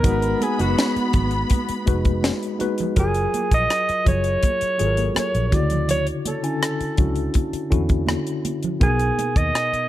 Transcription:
Already playing: alto saxophone A#4
0.03 fingered electric bass G#1, tine electric piano G#3 B3 D#4 F#4, string section B3 B5, kick, closed hi-hat, muted conga, low conga
0.22 closed hi-hat
0.41 alto saxophone G#4, closed hi-hat, muted conga, high conga
0.59 fingered electric bass F#1, tine electric piano G#3 D#4 F#4 B4, alto saxophone F#4, closed hi-hat
0.78 snare, closed hi-hat, muted conga
0.96 muted fingered electric bass stroke, closed hi-hat
1.13 fingered electric bass G#1, kick, closed hi-hat, muted conga, low conga
1.31 closed hi-hat
1.50 kick, closed hi-hat, muted conga, high conga
1.69 muted fingered electric bass stroke, closed hi-hat
1.86 fingered electric bass F1, tine electric piano G#3 D#4 F#4 B4, kick, closed hi-hat, muted conga
2.05 kick, closed hi-hat, high conga
2.23 snare, closed hi-hat, high conga
2.43 closed hi-hat
2.59 tine electric piano G#3 D#4 F#4 B4, closed hi-hat, high conga
2.78 closed hi-hat, low conga
2.96 fingered electric bass F#1, tine electric piano F#3 F4 G#4 A#4, alto saxophone G#4, kick, closed hi-hat, muted conga, low conga
3.14 closed hi-hat
3.34 closed hi-hat, muted conga, high conga
3.52 fingered electric bass A#1, alto saxophone D#5, kick, closed hi-hat
3.70 cross-stick, closed hi-hat
3.89 muted fingered electric bass stroke, closed hi-hat
4.05 fingered electric bass F#1, tine electric piano F#3 F4 G#4 C#5, alto saxophone C#5, kick, closed hi-hat, low conga
4.24 closed hi-hat
4.43 kick, closed hi-hat, muted conga, high conga
4.61 muted fingered electric bass stroke, closed hi-hat
4.78 fingered electric bass G#1, tine electric piano F#3 F4 G#4 A4, closed hi-hat, muted conga, high conga
4.86 tine electric piano A#4
4.97 closed hi-hat, high conga
5.15 muted fingered electric bass stroke, cross-stick, closed hi-hat, muted conga, high conga
5.19 alto saxophone C#5
5.35 fingered electric bass A#1, closed hi-hat
5.47 tine electric piano D3, alto saxophone C#5
5.52 fingered electric bass D2, tine electric piano C#3 E4 F#4, alto saxophone D5, kick, cross-stick, closed hi-hat, high conga
5.70 closed hi-hat, low conga
5.89 alto saxophone C#5, closed hi-hat, muted conga, low conga
6.07 closed hi-hat
6.25 alto saxophone A4, closed hi-hat, muted conga, high conga
6.42 tine electric piano D3 C#4 E4 G#5, closed hi-hat
6.63 cross-stick, closed hi-hat
6.80 muted fingered electric bass stroke, closed hi-hat
6.97 fingered electric bass C#2, tine electric piano C#4 D4 E4 F#4, kick, closed hi-hat, muted conga, low conga
7.16 closed hi-hat
7.34 kick, closed hi-hat, high conga
7.53 muted fingered electric bass stroke, closed hi-hat
7.70 fingered electric bass E2, tine electric piano D3 C#4 E4 F#4, kick, closed hi-hat, high conga
7.89 kick, closed hi-hat, high conga
8.07 cross-stick, closed hi-hat, muted conga, high conga
8.27 closed hi-hat
8.45 closed hi-hat, muted conga, high conga
8.63 closed hi-hat, low conga
8.80 fingered electric bass B1, tine electric piano B2 B3 D#4 A#4, alto saxophone G#4, kick, closed hi-hat, muted conga, low conga
8.99 closed hi-hat
9.19 closed hi-hat, high conga
9.36 fingered electric bass D#2, alto saxophone D#5, kick, closed hi-hat
9.55 cross-stick, closed hi-hat
9.73 muted fingered electric bass stroke, closed hi-hat

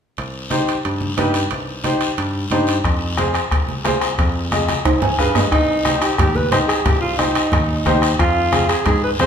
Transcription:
0.17 picked electric bass C2, high timbale, long guiro
0.50 upright piano D#4 G4 C5, high conga, high timbale, short guiro
0.67 high timbale, short guiro
0.83 picked electric bass G2, high timbale, long guiro
1.01 high conga
1.17 picked electric bass G2, upright piano D#4 G4 B4, high conga, high timbale, low timbale, short guiro
1.34 high timbale, short guiro
1.51 picked electric bass C2, high timbale, long guiro
1.84 upright piano D#4 G4 C5, high conga, high timbale, short guiro
2.01 high timbale, short guiro
2.17 picked electric bass G2, high timbale, long guiro
2.50 picked electric bass G2, upright piano D#4 G4 C5, high conga, high timbale, low timbale, short guiro
2.67 high timbale, short guiro
2.84 picked electric bass F2, bombo low, bombo rim, high timbale, long guiro
3.17 upright piano F4 G#4 C5, bombo rim, high conga, high timbale, short guiro
3.34 bombo rim, high timbale, short guiro
3.51 picked electric bass C2, bombo low, bombo rim, high timbale, long guiro
3.68 high conga
3.84 picked electric bass C2, upright piano F4 G#4 C5, bombo rim, high conga, high timbale, low timbale, short guiro
4.01 bombo rim, high timbale, short guiro
4.18 picked electric bass F2, bombo low, bombo rim, high timbale, long guiro
4.52 upright piano F4 G#4 D#5, bombo rim, high conga, high timbale, short guiro
4.68 bombo rim, high conga, high timbale, short guiro
4.85 picked electric bass C2, bombo low, bombo rim, high conga, high timbale
5.02 upright piano G#5, low conga, high timbale
5.18 picked electric bass G2, upright piano F4 G#4 B4 F5, bombo low, bombo rim, short guiro
5.35 upright piano D#5, bombo rim, low conga, low timbale, short guiro
5.51 picked electric bass C2, alto saxophone D#4, bombo low, bombo rim, high timbale
5.85 upright piano D#4 G4 C5, bombo rim, high conga, high timbale, short guiro
6.02 alto saxophone G4, bombo rim, high timbale, short guiro
6.18 picked electric bass D#2, alto saxophone G4, bombo low, bombo rim, low conga, high timbale
6.36 alto saxophone B4, high conga
6.51 picked electric bass C2, upright piano D#4 G4 D#5, alto saxophone C5, bombo rim, high conga, low conga, high timbale, short guiro
6.68 alto saxophone G#4, bombo rim, high timbale, short guiro
6.85 picked electric bass C2, alto saxophone G4, bombo low, bombo rim, low conga, high timbale, long guiro
7.01 alto saxophone F4
7.18 alto saxophone D#4, upright piano D#4 G4 C5, bombo rim, high conga, high timbale, short guiro
7.35 bombo rim, high timbale, short guiro
7.52 picked electric bass D#2, bombo low, bombo rim, low conga, high timbale, long guiro
7.86 picked electric bass D#2, upright piano D#4 G4 C5, bombo low, bombo rim, high conga, high timbale, low timbale, short guiro
8.02 bombo rim, high timbale, short guiro
8.19 picked electric bass F2, alto saxophone F4, bombo low, bombo rim, high timbale
8.52 upright piano C4 F4 G#4, bombo rim, high conga, high timbale, short guiro
8.69 alto saxophone G#4, bombo rim, high timbale, short guiro
8.86 picked electric bass G#2, alto saxophone G#4, bombo low, bombo rim, low conga, high timbale, long guiro
9.04 alto saxophone B4
9.18 picked electric bass F2, upright piano C4 F4 G#4, alto saxophone C5, bombo rim, high conga, high timbale, short guiro

